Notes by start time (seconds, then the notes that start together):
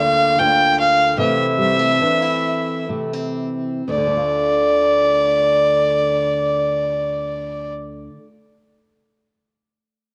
Already playing: D2 D3 A#3 F4 F5
0.39 D2 F4 G5
0.79 F5
1.17 C3 E3 A3 C4 E4 E5
1.58 G3
1.79 A3
2.01 E3 D4
2.22 E4
2.89 C3 A3
3.13 C4
3.88 D2 D5
3.97 D3
4.07 A3
4.17 F4